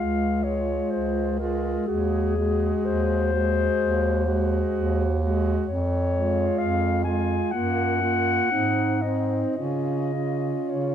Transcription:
Already playing: C#2 G#3 F4 F5
0.44 G#3 F4 C#5
0.91 C#2 C5
1.39 G#3 F4 A#4
1.87 D#2 G#3 F#4 G#4
2.36 G#3 F#4
2.85 D#2 C5
3.33 G#3 F#4
3.80 D#2
4.26 G#3 F#4
4.75 D#2
5.21 G#3 F#4
5.68 F2 C#5
6.13 G#3 F4
6.58 F2 F5
7.04 G#3 F4 G#5
7.51 F#2 A#3 F4 F#5
8.02 A#3 F4
8.51 G#2 C4 D#4
9.02 C4 D#4 D#5
9.56 C#3 C#4 F4 D#5
10.14 C#4 F4
10.69 C#3 C#5

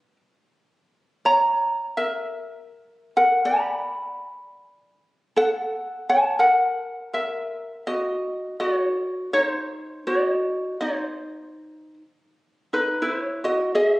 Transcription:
Already playing: B4 G5
1.25 C#5 A#5
1.97 A#4 E5
3.17 A#4 F#5
3.45 D5 B5
5.36 A4 F#5
6.09 C#5 A5
6.39 A#4 F#5
7.13 A#4 E5
7.87 F#4 D#5
8.60 F#4 C#5
9.33 D#4 C#5
9.44 C5
10.07 F#4 D#5
10.81 D#4 C5
12.73 D#4 B4
13.02 E4 C5
13.20 C#5
13.44 F#4 D#5
13.75 G#4 D#5
13.86 E5

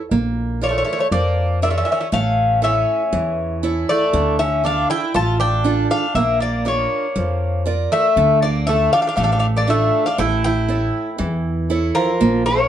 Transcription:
0.11 A#1 A#3
0.61 A#3 F4 A#4 C#5 D5
0.69 A3 C#5
0.78 A3 C#5
0.84 A3 C#5
0.93 A3 C#5
0.99 A3 C#5
1.11 F2 F3 A#3 D5
1.62 A#3 F4 A#4 D5 E5
1.70 C#4 E5
1.78 C#4 E5
1.85 C#4 E5
1.92 C#4 E5
2.00 C#4 E5
2.12 A1 A3 C#4 F5
2.62 C#4 E4 A4 C#5 E5
3.13 E2 E3
3.63 E4 A4 C#5
3.89 A3 D5
4.13 D2 D3
4.39 C#4 E5
4.64 D4 F4 A4 F5
4.90 E4 G5
5.14 A1 A3 F4 A5
5.40 D4 G5
5.64 D4 F4 A4
5.91 D4 F5
6.15 A#1 A#3 E5
6.40 A#3 D5
6.65 A#3 D4 F4 A#4 C#5
7.16 F2 F3
7.66 F4 A#4 D5
7.92 A3 E5
8.16 D2 D3
8.42 A#3 D5
8.67 A3 D4 F4 A4 E5
8.93 D4 F5
9.01 D4 F5
9.07 D4 F5
9.16 A1 A3 D4 F5
9.23 D4 F5
9.32 D4 F5
9.39 D4 F5
9.57 A#3 D5
9.67 A3 D4 F4 A4 E5
10.06 D4 F5
10.18 A1 A3 E4 G5
10.44 E4 G5
10.68 E4 A4 C#5
11.18 E2 E3
11.70 E4 A4 C#5
11.95 F3 A#4
12.21 A#1 A#3
12.46 A#3 C#5

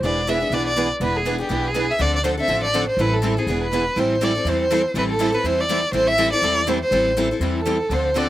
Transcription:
0.00 E1 E3 B3 D4 G#4 D5
0.05 B4
0.27 E3 B3 D4 G#4 B4 E5
0.40 B3 D4 G#4
0.50 B1 E3 B3 D4 G#4 B4 D5
0.67 D5
0.76 E3 B3 D4 G#4 B4
1.00 E1 E3 B3 D4 G#4 B4
1.17 G#4
1.26 E3 B3 D4 G#4 B4
1.38 B3 D4 G4 G#4
1.49 B1 E3 B3 D4 G#4 B4
1.67 G#4
1.74 E3 B3 D4 G#4 B4
1.91 E5
1.99 D2 D3 F3 C4 D4 A4 D5
2.15 D5
2.24 D3 F3 C4 D4 A4 C5
2.38 C4 D4 A4 E5
2.48 A1 D3 F3 C4 D4 A4
2.64 D5
2.74 D3 F3 C4 D4 A4
2.89 C5
2.97 A1 E3 G3 C4 E4 A4 B4
3.14 A4
3.22 E3 G3 C4 E4 A4
3.37 C4 E4 G#4 A4
3.47 E1 E3 B3 D4 G#4 B4
3.64 B4
3.73 E3 B3 D4 G#4 B4
3.96 A1 E3 G3 C4 E4 A4 C5
4.21 E3 G3 C4 E4 A4 D5
4.35 C4 E4 A4
4.44 E2 E3 G3 C4 E4 A4
4.49 C5
4.62 C5
4.71 E3 G3 C4 E4 A4
4.94 A1 E3 G3 C4 E4 A4 B4
5.10 A4
5.19 E3 G3 C4 E4 A4
5.32 C4 E4 A4 B4
5.44 E2 E3 G3 C4 E4 A4 C5
5.60 D5
5.69 E3 G3 C4 E4 A4
5.92 A1 E3 G3 C4 E4 A4 C5
6.08 E5
6.18 E3 G3 C4 E4 A4
6.32 C4 E4 A4 D5
6.42 E2 E3 G3 C4 E4 A4
6.67 E3 G3 C4 E4 A4 C5
6.82 C5
6.91 A1 E3 G3 C4 E4 A4
7.17 E3 G3 C4 E4 A4
7.31 C4 E4 A4
7.40 E2 E3 G3 C4 E4 A4
7.59 A4
7.66 E3 G3 C4 E4 A4
7.89 D2 D3 F3 C4 D4 A4 C5
8.16 D3 F3 C4 D4 A4 D5

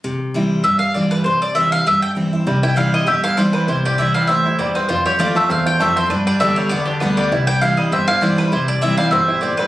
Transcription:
0.04 C3
0.34 E3 G3 C4 E4
0.64 G2 E5
0.79 F5
0.94 E3 G3 C4 E4 D5
1.11 B4
1.24 C3 C5
1.42 D5
1.55 E3 G3 C4 E4 E5
1.72 F5
1.86 G2 E5
2.02 G5
2.15 E3 G3 C4 E4
2.33 C4 E4
2.47 C2 C3 G3
2.63 E4 G5
2.76 E3 G3 C4 E4 F5
2.94 E4 D#5
3.07 G1 G2 G4 E5
3.24 E4 F5
3.37 E3 G3 C4 E4 D5
3.53 G3 B4
3.68 C2 C3 E4 C5
3.85 G4 D5
3.98 E3 G3 C4 E4 E5
4.14 G3 F5
4.27 D2 A2 C4 E5
4.46 E4
4.59 E2 G2 G3 D5
4.75 C4 B4
4.89 F2 F4 C5
5.06 G4 C#5
5.19 F3 A3 C4 F4 D5
5.35 A3 C4 F4 E5
5.50 E2 C4 F5
5.66 F4 G5
5.80 F2 A3 E5
5.96 C4 C5
6.10 G2 D4 B4
6.27 G3 D5
6.40 D3 G3 B3 D4 G4 E5
6.56 G3 C#5
6.69 E2 D3 B3 D5
6.86 D4 G4
7.00 D2 D3 G3 B3 G4 B4
7.17 G3 D5
7.31 C2 C3 E4
7.47 G3 G5
7.61 E3 G3 C4 E4 F5
7.77 G3 D#5
7.92 G1 G2 C4 E5
8.08 E4 F5
8.21 E3 G3 C4 E4 D5
8.38 G3 B4
8.52 C2 C3 E4 C5
8.68 D5
8.81 E3 G3 C4 E4 E5
8.97 G3 C4 E4 F5
9.11 G1 C4 E5
9.28 E4
9.41 A2 C4 D5
9.57 G3 B4

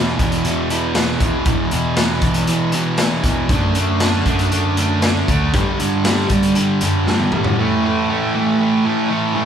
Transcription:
Already playing: E2 B2 E3
0.19 E2 B2 E3, kick, closed hi-hat
0.32 closed hi-hat
0.45 E2 B2 E3, closed hi-hat
0.70 E2 B2 E3, closed hi-hat
0.95 E2 B2 E3, snare, closed hi-hat
1.20 E2 B2 E3, kick, closed hi-hat
1.45 E2 B2 E3, kick, closed hi-hat
1.71 E2 B2 E3, closed hi-hat
1.96 E2 B2 E3, snare, closed hi-hat
2.21 E2 B2 E3, kick, closed hi-hat
2.34 closed hi-hat
2.47 E2 B2 E3, closed hi-hat
2.72 E2 B2 E3, closed hi-hat
2.97 E2 B2, snare, closed hi-hat
3.02 E3
3.24 E2 B2 E3, kick, closed hi-hat
3.49 F#2 D3 A3 D4, kick, closed hi-hat
3.75 D3 A3 D4, closed hi-hat
4.00 D3 A3 D4, snare, closed hi-hat
4.26 F#2 D3 A3 D4, kick, closed hi-hat
4.39 closed hi-hat
4.51 D3 A3 D4, closed hi-hat
4.77 D3 A3 D4, closed hi-hat
5.02 D3 A3 D4, snare, closed hi-hat
5.28 D2 D3 A3 D4, kick, closed hi-hat
5.53 G2 D3 G3, kick, closed hi-hat
5.79 G2 D3 G3, closed hi-hat
6.05 G2 D3 G3, snare, closed hi-hat
6.30 G2 D3 G3, kick, closed hi-hat
6.43 closed hi-hat
6.55 G2 D3 G3, closed hi-hat
6.81 F#2 G2 D3 G3, closed hi-hat
7.07 G2 D3 G3, snare
7.20 high tom
7.32 G2 A2 D3 G3, mid tom
7.44 floor tom
7.59 A2 E3 A3
7.84 A2 E3 A3
8.09 A2 E3 A3
8.34 A2 E3 A3
8.60 A2 E3 A3
8.85 A2 E3 A3
9.09 A2 E3 A3
9.34 A2 E3 A3

